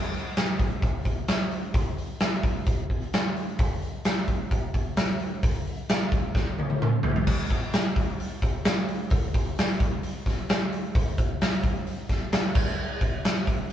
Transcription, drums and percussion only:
0.13 open hi-hat
0.36 snare, open hi-hat
0.60 kick, open hi-hat
0.82 kick, open hi-hat
1.05 kick, open hi-hat
1.28 snare, open hi-hat
1.51 open hi-hat
1.74 kick, open hi-hat
1.98 open hi-hat
2.20 snare, open hi-hat
2.43 kick, open hi-hat
2.66 kick, open hi-hat
2.90 kick, open hi-hat
3.13 snare, open hi-hat
3.36 open hi-hat
3.58 kick, open hi-hat
3.82 open hi-hat
4.04 snare, open hi-hat
4.27 kick, open hi-hat
4.51 kick, open hi-hat
4.73 kick, open hi-hat
4.96 snare, open hi-hat
5.19 open hi-hat
5.43 kick, open hi-hat
5.67 open hi-hat
5.89 snare, open hi-hat
6.12 kick, open hi-hat
6.35 kick, snare
6.59 high tom
6.70 high tom
6.82 mid tom
7.03 floor tom
7.16 floor tom
7.27 kick, crash
7.51 kick, open hi-hat
7.73 snare, open hi-hat
7.96 kick, open hi-hat
8.20 open hi-hat
8.42 kick, open hi-hat
8.65 snare, open hi-hat
8.88 open hi-hat
9.10 kick, open hi-hat
9.34 kick, open hi-hat
9.58 snare, open hi-hat
9.80 kick, open hi-hat
10.03 open hi-hat
10.26 kick, snare, open hi-hat
10.49 snare, open hi-hat
10.72 open hi-hat
10.95 kick, open hi-hat
11.18 kick, open hi-hat
11.41 snare, open hi-hat
11.63 kick, open hi-hat
11.87 open hi-hat
12.09 kick, snare, open hi-hat
12.32 snare, open hi-hat
12.55 kick, crash
13.01 kick, open hi-hat
13.24 snare, open hi-hat
13.38 snare
13.47 kick, open hi-hat

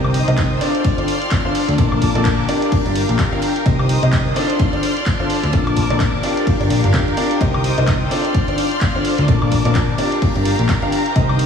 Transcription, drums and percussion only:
0.04 high woodblock
0.14 open hi-hat, ride
0.28 closed hi-hat
0.37 kick, snare, clap, closed hi-hat, ride
0.61 snare, open hi-hat, ride
0.75 closed hi-hat
0.84 kick, closed hi-hat, ride
0.98 closed hi-hat
1.07 open hi-hat, ride
1.22 closed hi-hat
1.30 kick, snare, clap, closed hi-hat, ride
1.55 open hi-hat, ride
1.69 snare, closed hi-hat
1.78 kick, closed hi-hat, ride
1.92 high woodblock
2.02 kick, open hi-hat, ride
2.15 closed hi-hat
2.25 kick, snare, clap, closed hi-hat, ride
2.49 open hi-hat, ride
2.62 snare, closed hi-hat
2.72 kick, closed hi-hat, open hi-hat
2.86 closed hi-hat
2.95 open hi-hat, ride
3.09 closed hi-hat
3.19 kick, snare, clap, closed hi-hat, ride
3.32 ride
3.42 open hi-hat, ride
3.56 closed hi-hat
3.66 kick, closed hi-hat, ride
3.79 high woodblock
3.89 open hi-hat, ride
4.03 closed hi-hat
4.12 kick, snare, clap, closed hi-hat, ride
4.35 snare, open hi-hat, ride
4.50 closed hi-hat
4.59 kick, closed hi-hat, ride
4.73 closed hi-hat
4.83 open hi-hat, ride
4.97 closed hi-hat
5.06 kick, snare, clap, closed hi-hat, ride
5.30 open hi-hat, ride
5.44 snare, closed hi-hat
5.53 kick, closed hi-hat, ride
5.67 closed hi-hat, high woodblock
5.76 kick, open hi-hat, ride
5.90 closed hi-hat
6.00 kick, snare, clap, closed hi-hat, ride
6.23 open hi-hat, ride
6.37 snare, closed hi-hat
6.47 kick, closed hi-hat, open hi-hat
6.61 closed hi-hat
6.70 open hi-hat, ride
6.84 closed hi-hat
6.94 kick, snare, clap, closed hi-hat, ride
7.08 ride
7.17 open hi-hat, ride
7.31 closed hi-hat
7.41 kick, closed hi-hat, ride
7.54 high woodblock
7.64 open hi-hat, ride
7.78 closed hi-hat
7.87 kick, snare, clap, closed hi-hat, ride
8.11 snare, open hi-hat, ride
8.25 closed hi-hat
8.34 kick, closed hi-hat, ride
8.48 closed hi-hat
8.58 open hi-hat, ride
8.71 closed hi-hat
8.81 kick, snare, clap, closed hi-hat, ride
9.05 open hi-hat, ride
9.18 snare, closed hi-hat
9.28 kick, closed hi-hat, ride
9.42 high woodblock
9.51 kick, open hi-hat, ride
9.65 closed hi-hat
9.75 kick, snare, clap, closed hi-hat, ride
9.98 open hi-hat, ride
10.12 snare, closed hi-hat
10.22 kick, closed hi-hat, open hi-hat
10.36 closed hi-hat
10.45 open hi-hat, ride
10.59 closed hi-hat
10.69 kick, snare, clap, closed hi-hat, ride
10.82 ride
10.92 open hi-hat, ride
11.06 closed hi-hat
11.16 kick, closed hi-hat, ride
11.29 high woodblock
11.39 open hi-hat, ride

